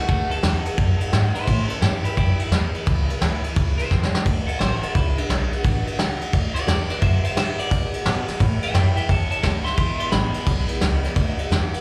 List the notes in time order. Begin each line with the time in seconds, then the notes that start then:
0.07 D2 D3 A3 D4 F#4, kick, ride
0.30 A3 D4 F#4 A4, muted upright bass stroke, ride
0.42 E2 D3 A3 D4 F#4, snare, ride
0.65 A3 D4 F#4, muted upright bass stroke, ride
0.77 F#2 D3 A3 D4 F#4, kick, ride
0.99 A3 D4 F#4, muted upright bass stroke, ride
1.12 G#2 D3 A3 D4 F#4, snare, ride
1.34 A3 D4 E4 F#4 C5, muted upright bass stroke, ride
1.45 A2 E3 A3 C#4 E4 C5, kick, ride
1.68 A3 C#4 E4 A4, muted upright bass stroke, ride
1.81 G2 A2 E3 A3 C#4 E4 A4, snare, ride
2.04 A3 C#4 E4 G4, muted upright bass stroke, ride
2.16 F#2 E3 A3 C#4 E4 G4, kick, ride
2.38 A3 C#4 E4 A4, muted upright bass stroke, ride
2.50 E2 A2 E3 A3 C#4 E4, snare, ride
2.73 A3 C#4 E4, muted upright bass stroke, ride
2.86 C#2 A2 E3 A3 C#4 E4, kick, ride
3.08 A3 C#4 E4, ride
3.20 D2 A2 E3 A3 C#4 E4, snare, ride
3.43 A3 C#4 E4, muted upright bass stroke, ride
3.55 C#2 E3 A3 C#4 E4, kick, ride
3.78 A3 C#4 E4 C5, muted upright bass stroke, ride
3.89 E2 A2 E3 A3 C#4 E4, kick, snare
4.03 snare
4.12 A3 C#4 E4, muted upright bass stroke, snare
4.25 D2 D3 A3 D4 F#4, kick, ride
4.47 A3 D4 F#4 A4, muted upright bass stroke, ride
4.59 A1 D3 A3 D4 F#4 C5, snare, ride
4.81 A3 D4 F#4 A4, muted upright bass stroke, ride
4.94 C#2 D3 A3 D4 E4 F#4, kick, ride
5.17 A3 D4 F#4, muted upright bass stroke, ride
5.29 B1 D3 A3 D4 F#4, snare, ride
5.51 A3 D4 F#4, muted upright bass stroke, ride
5.63 A1 D3 A3 D4 F#4, kick, ride
5.86 A3 D4 F#4, muted upright bass stroke, ride
5.97 C#2 D3 A3 D4 F#4, snare, ride
6.21 A3 D4 F#4, muted upright bass stroke, ride
6.33 D2 D3 A3 D4 F#4, kick, ride
6.54 A3 D4 F#4 D5, muted upright bass stroke, ride
6.67 E2 D3 A3 D4 F#4 D5, snare, ride
6.90 A3 D4 F#4 D5, muted upright bass stroke, snare, ride
7.01 F#2 D3 A3 D4 F#4 C5 E5, kick, ride
7.24 A3 D4 F#4 C5 E5, muted upright bass stroke, ride
7.36 G2 D3 A3 D4 F#4 C5 E5, snare, ride
7.58 A3 D4 F#4 D5, muted upright bass stroke, ride
7.71 A2 D3 A3 D4 F#4, kick, ride
7.93 A3 D4 F#4, muted upright bass stroke, ride
8.06 B2 D3 A3 D4 F#4, snare, ride
8.26 A3 D4 F#4, muted upright bass stroke, snare, ride
8.39 A2 E3 A3 C#4 E4, kick, ride
8.62 A3 C#4 E4 E5 G5, muted upright bass stroke, ride
8.74 F#2 A2 E3 A3 C#4 E4 E5 G5, snare, ride
8.96 A3 C#4 E4 E5 G5, muted upright bass stroke, ride
9.07 E2 E3 A3 C#4 E4 C#5 A5, kick, ride
9.30 A3 C#4 E4 C#5 A5, muted upright bass stroke, ride
9.41 D2 A2 E3 A3 C#4 E4 C#5 A5, kick, snare, ride
9.64 A3 C#4 E4 E5 C6, muted upright bass stroke, snare, ride
9.76 E2 B2 E3 G#3 B3 E4 E5 C6, kick, ride
9.99 E3 G#3 B3 E4 E5 C6, muted upright bass stroke, ride
10.11 A1 E2 B2 E3 G#3 B3 E4 B5, snare, ride
10.34 E3 G#3 B3 E4, muted upright bass stroke, ride
10.46 B1 E3 G#3 B3 E4, kick, ride
10.68 E3 G#3 B3 E4, muted upright bass stroke, ride
10.81 C#2 E2 B2 E3 G#3 B3 E4, snare, ride
11.03 E3 G#3 B3 E4, muted upright bass stroke, snare, ride
11.16 D2 D3 A3 D4 F#4, kick, ride
11.38 A3 D4 F#4, muted upright bass stroke, ride
11.50 E2 D3 A3 D4 F#4, snare, ride
11.72 A3 D4 F#4, muted upright bass stroke, ride